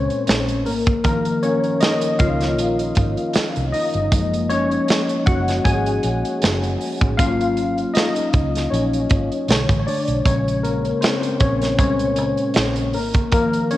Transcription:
0.00 0.23 A#2 medium
0.00 0.24 G#3 medium
0.00 0.67 A#3 medium
0.00 0.68 C4 medium
0.00 0.68 C#4 medium
0.00 0.66 A#4 medium
0.00 0.69 C5 medium
0.00 0.70 C#5 medium
0.10 closed hi-hat soft
0.27 0.67 A#1 medium
0.27 snare loud
0.27 closed hi-hat medium
0.49 closed hi-hat medium
0.66 1.32 G#1 loud
0.66 1.03 A#3 medium
0.66 1.03 A#4 medium
0.66 open hi-hat medium
0.86 kick loud
0.86 closed hi-hat medium
1.04 2.16 D#3 medium
1.04 2.16 F3 medium
1.04 1.41 A#3 medium
1.04 1.44 A#4 medium
1.04 kick loud
1.04 closed hi-hat medium
1.25 closed hi-hat soft
1.43 1.61 C#4 medium
1.43 1.60 C#5 medium
1.43 closed hi-hat medium
1.64 closed hi-hat soft
1.81 2.18 D#4 medium
1.81 2.21 D#5 loud
1.81 snare loud
1.81 closed hi-hat medium
2.01 closed hi-hat medium
2.19 2.59 C#2 loud
2.19 3.70 F4 medium
2.19 3.78 F5 loud
2.19 kick medium
2.19 closed hi-hat medium
2.41 snare soft
2.41 closed hi-hat medium
2.59 2.91 A#1 loud
2.59 closed hi-hat medium
2.79 closed hi-hat medium
2.95 3.15 G#1 medium
2.95 kick medium
2.95 closed hi-hat medium
3.17 closed hi-hat soft
3.33 muted fingered electric bass stroke soft
3.33 snare loud
3.33 closed hi-hat medium
3.56 3.72 C2 medium
3.56 closed hi-hat medium
3.72 4.46 D#4 medium
3.72 4.52 D#5 medium
3.72 open hi-hat medium
3.94 4.12 G1 medium
3.94 closed hi-hat medium
4.11 4.77 F#1 loud
4.11 4.64 F3 medium
4.11 4.64 G#3 medium
4.11 4.64 A#3 medium
4.11 kick loud
4.11 closed hi-hat loud
4.34 closed hi-hat medium
4.50 5.23 C#4 medium
4.50 5.29 C#5 loud
4.50 closed hi-hat medium
4.71 closed hi-hat soft
4.88 snare loud
4.88 closed hi-hat medium
5.09 closed hi-hat medium
5.26 5.59 F#1 medium
5.26 5.45 F#4 medium
5.26 5.43 F#5 loud
5.26 kick loud
5.26 closed hi-hat medium
5.48 snare soft
5.48 closed hi-hat medium
5.64 5.98 G#1 loud
5.64 7.15 G#4 medium
5.64 7.23 G#5 loud
5.64 kick medium
5.64 closed hi-hat medium
5.86 closed hi-hat medium
6.03 6.21 A#1 medium
6.03 closed hi-hat medium
6.25 closed hi-hat soft
6.42 6.75 F#1 medium
6.42 snare loud
6.42 closed hi-hat medium
6.63 closed hi-hat medium
6.81 open hi-hat medium
7.01 7.19 A1 medium
7.01 kick loud
7.01 closed hi-hat medium
7.17 7.84 G#1 loud
7.17 7.70 F#3 medium
7.17 7.71 A#3 medium
7.17 7.71 C#4 medium
7.17 7.92 F4 medium
7.17 7.97 F5 loud
7.17 kick loud
7.17 closed hi-hat loud
7.41 closed hi-hat medium
7.57 closed hi-hat medium
7.78 closed hi-hat soft
7.94 8.68 D#4 medium
7.94 8.74 D#5 medium
7.94 snare loud
7.94 closed hi-hat medium
8.16 closed hi-hat medium
8.33 8.66 C#2 loud
8.33 kick loud
8.33 closed hi-hat medium
8.56 snare soft
8.56 closed hi-hat medium
8.70 9.05 A#1 loud
8.70 9.45 C#4 medium
8.70 9.44 C#5 medium
8.70 closed hi-hat medium
8.93 closed hi-hat medium
9.10 9.28 G#1 medium
9.10 kick loud
9.10 closed hi-hat medium
9.32 closed hi-hat soft
9.48 9.66 B1 medium
9.48 10.21 D3 medium
9.48 10.22 A3 soft
9.48 9.78 C#5 medium
9.48 snare loud
9.48 closed hi-hat medium
9.69 9.85 A1 medium
9.69 kick medium
9.69 closed hi-hat medium
9.80 9.87 C#5 medium
9.87 10.23 D4 medium
9.87 10.26 D5 medium
9.87 open hi-hat medium
10.08 10.23 B1 medium
10.08 closed hi-hat medium
10.26 10.91 A#1 loud
10.26 11.37 C#3 medium
10.26 11.37 G#3 medium
10.26 10.62 C#4 medium
10.26 10.65 C#5 medium
10.26 kick loud
10.26 closed hi-hat loud
10.48 closed hi-hat soft
10.63 10.81 A#3 medium
10.63 10.81 A#4 medium
10.63 closed hi-hat medium
10.85 closed hi-hat soft
11.01 11.38 C4 medium
11.01 11.41 C5 medium
11.01 snare loud
11.01 closed hi-hat medium
11.23 closed hi-hat medium
11.40 11.79 A#1 medium
11.40 11.59 C#4 medium
11.40 11.58 C#5 medium
11.40 kick loud
11.40 closed hi-hat medium
11.62 snare soft
11.62 closed hi-hat medium
11.79 12.18 C2 loud
11.79 12.13 A#2 soft
11.79 12.14 G#3 soft
11.79 12.91 C#4 medium
11.79 12.14 C5 soft
11.79 12.98 C#5 medium
11.79 kick loud
11.79 closed hi-hat medium
11.99 closed hi-hat medium
12.16 12.35 C#2 loud
12.16 closed hi-hat medium
12.37 closed hi-hat soft
12.54 12.94 A#1 medium
12.54 snare loud
12.54 closed hi-hat medium
12.76 closed hi-hat medium
12.93 13.60 G#1 loud
12.93 13.31 A#3 medium
12.93 13.31 A#4 medium
12.93 open hi-hat medium
13.13 kick loud
13.13 closed hi-hat medium
13.32 13.77 D#3 medium
13.32 13.77 F3 medium
13.32 13.69 A#3 medium
13.32 13.72 A#4 medium
13.32 kick loud
13.32 closed hi-hat loud
13.53 closed hi-hat soft
13.71 13.77 C#4 medium
13.71 13.77 C#5 loud
13.71 closed hi-hat medium

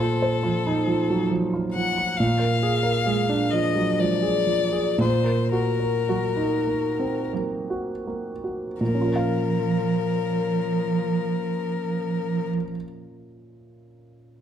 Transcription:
0.00 2.14 A#2 soft
0.00 0.35 F4 soft
0.00 1.27 A4 medium
0.00 0.14 C5 soft
0.22 0.57 C5 soft
0.43 1.09 F3 soft
0.43 0.78 F4 soft
0.67 1.01 D#4 soft
0.87 1.22 F3 soft
1.10 1.31 F#3 soft
1.30 1.96 F3 soft
1.30 1.66 F3 soft
1.54 1.88 F4 soft
1.74 2.10 F3 soft
1.74 2.18 F#5 medium
1.98 2.19 F4 soft
2.17 4.96 A#2 soft
2.17 3.52 F5 medium
2.39 2.74 A#4 soft
2.63 2.97 G#4 soft
2.83 3.19 A#4 soft
3.06 3.76 G#3 soft
3.06 3.42 G#4 soft
3.29 3.66 D4 soft
3.51 3.90 F3 soft
3.51 4.01 D#5 medium
3.76 3.99 F#3 soft
3.99 4.38 F3 soft
3.99 4.75 G#3 soft
3.99 5.00 D5 medium
4.23 4.63 G#4 soft
4.47 4.88 F3 soft
4.73 4.99 G#4 soft
4.98 8.75 A#2 soft
4.98 5.52 C5 medium
5.24 5.68 A#4 soft
5.52 5.96 F#4 soft
5.52 7.30 A#4 medium
5.80 6.25 A#4 soft
6.09 7.03 F#3 soft
6.09 6.56 F#4 soft
6.37 6.86 D#4 soft
6.67 7.19 A#3 soft
6.99 7.33 C4 soft
7.33 8.47 F#3 soft
7.33 7.91 A#3 soft
7.70 8.29 F#4 soft
8.07 8.66 A#3 soft
8.44 8.80 F#4 soft
8.81 12.49 A#2 soft
8.81 12.49 F3 soft
8.81 12.50 A#4 soft
8.88 12.56 A#3 soft
8.94 12.63 C#4 soft
9.01 12.70 F4 soft
9.08 12.76 A#4 soft
9.16 12.84 F5 soft

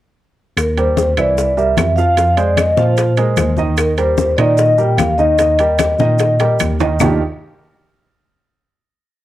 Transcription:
0.57 1.13 D#2 medium
0.57 0.77 A#4 medium
0.57 high bongo medium
0.57 high conga soft
0.57 high timbale medium
0.57 claves medium
0.57 maracas medium
0.77 1.10 G3 medium
0.77 1.10 G4 medium
0.77 1.11 A#4 medium
0.77 1.19 C5 medium
0.77 high bongo soft
0.77 high conga soft
0.77 high timbale medium
0.77 maracas soft
0.97 high bongo medium
0.97 high conga medium
0.97 maracas medium
1.17 1.73 C2 medium
1.17 1.50 E3 medium
1.17 1.51 E4 medium
1.17 1.59 D5 medium
1.17 1.51 E5 medium
1.17 high bongo soft
1.17 high conga soft
1.17 high timbale medium
1.17 claves medium
1.17 maracas soft
1.37 high bongo medium
1.37 high conga soft
1.37 maracas medium
1.57 1.90 G3 medium
1.57 1.90 G4 medium
1.57 1.90 A#4 medium
1.57 1.95 E5 medium
1.57 high conga soft
1.57 maracas soft
1.77 2.71 F2 medium
1.77 high bongo medium
1.77 low bongo medium
1.77 high conga medium
1.77 high timbale medium
1.77 low timbale medium
1.77 claves medium
1.77 maracas medium
1.96 2.14 F3 medium
1.96 2.14 F4 medium
1.96 2.38 F5 medium
1.96 2.14 F5 medium
1.96 high bongo soft
1.96 high conga soft
1.96 maracas soft
2.17 2.34 F3 medium
2.17 2.34 F4 medium
2.17 2.34 F5 medium
2.17 high bongo medium
2.17 high conga soft
2.17 high timbale medium
2.17 maracas medium
2.37 2.70 G#3 medium
2.37 2.70 G#4 medium
2.37 2.70 C5 medium
2.37 2.58 D5 medium
2.37 high bongo soft
2.37 high conga soft
2.37 high timbale medium
2.37 maracas soft
2.57 2.78 D#5 medium
2.57 high bongo medium
2.57 high conga medium
2.57 high timbale medium
2.57 claves medium
2.57 maracas medium
2.77 3.33 A#2 medium
2.77 3.10 F3 medium
2.77 3.10 F4 medium
2.77 3.53 C5 medium
2.77 3.10 F5 medium
2.77 high bongo soft
2.77 high conga medium
2.77 maracas soft
2.97 high bongo medium
2.97 high conga soft
2.97 high timbale medium
2.97 maracas medium
3.17 3.50 G#3 medium
3.17 3.50 G#4 medium
3.17 3.51 A#4 medium
3.17 high bongo soft
3.17 high conga soft
3.17 high timbale medium
3.17 maracas soft
3.37 4.32 D#2 medium
3.37 high bongo medium
3.37 low bongo medium
3.37 high conga medium
3.37 high timbale medium
3.37 claves medium
3.37 maracas medium
3.57 3.90 D#3 medium
3.57 3.91 D#4 medium
3.57 3.91 D#5 medium
3.57 high conga medium
3.57 maracas soft
3.77 3.86 A#4 medium
3.77 high bongo medium
3.77 high conga soft
3.77 high timbale medium
3.77 claves medium
3.77 maracas medium
3.98 4.31 G3 medium
3.98 4.31 G4 medium
3.98 4.31 A#4 medium
3.98 4.35 C5 medium
3.98 high bongo soft
3.98 high conga soft
3.98 high timbale medium
3.98 maracas soft
4.18 high bongo medium
4.18 high conga loud
4.18 maracas medium
4.37 4.94 A#2 medium
4.37 4.71 D#3 medium
4.37 4.71 D#4 medium
4.37 4.56 D5 medium
4.37 4.71 D#5 medium
4.37 high bongo soft
4.37 high timbale medium
4.37 claves medium
4.37 maracas soft
4.57 4.76 D#5 medium
4.57 high bongo medium
4.57 high conga soft
4.57 maracas medium
4.78 5.11 G3 medium
4.78 5.11 G4 medium
4.78 5.11 A#4 medium
4.78 4.99 G5 medium
4.78 high conga soft
4.78 maracas soft
4.98 5.93 D#2 medium
4.98 5.19 F5 medium
4.98 high bongo medium
4.98 low bongo medium
4.98 high conga medium
4.98 high timbale medium
4.98 claves medium
4.98 maracas medium
5.18 5.35 D#3 medium
5.18 5.35 D#4 medium
5.18 6.56 D#5 loud
5.18 5.35 D#5 medium
5.18 high bongo soft
5.18 high conga soft
5.18 maracas soft
5.38 5.56 D#3 medium
5.38 5.56 D#4 medium
5.38 5.56 D#5 medium
5.38 high bongo medium
5.38 high conga soft
5.38 high timbale medium
5.38 maracas medium
5.59 5.93 G3 medium
5.59 5.93 G4 medium
5.59 5.93 A#4 medium
5.59 high bongo soft
5.59 high conga soft
5.59 high timbale medium
5.59 maracas soft
5.79 high bongo medium
5.79 high conga loud
5.79 high timbale medium
5.79 claves medium
5.79 maracas medium
5.99 6.56 A#2 medium
5.99 6.33 D#3 medium
5.99 6.33 D#4 medium
5.99 6.33 D#5 medium
5.99 high bongo soft
5.99 high conga medium
5.99 maracas soft
6.19 high bongo medium
6.19 high conga soft
6.19 high timbale medium
6.19 maracas medium
6.39 6.73 G3 medium
6.39 6.74 G4 medium
6.39 6.74 A#4 medium
6.39 high bongo medium
6.39 high conga soft
6.39 high timbale medium
6.39 maracas soft
6.59 6.96 D#2 medium
6.59 low bongo medium
6.59 high conga medium
6.59 high timbale medium
6.59 claves medium
6.59 maracas medium
6.80 6.97 D#3 medium
6.80 6.97 D#4 medium
6.80 6.97 D#5 medium
6.80 low bongo medium
6.80 high conga medium
6.80 high timbale loud
6.80 maracas soft
6.99 7.19 D#2 medium
6.99 7.20 D#3 medium
6.99 7.20 A#3 medium
6.99 7.20 D4 medium
6.99 7.20 D#4 medium
6.99 7.20 F4 medium
6.99 7.20 G4 medium
6.99 low bongo medium
6.99 low conga loud
6.99 low timbale loud
6.99 claves medium
6.99 maracas medium

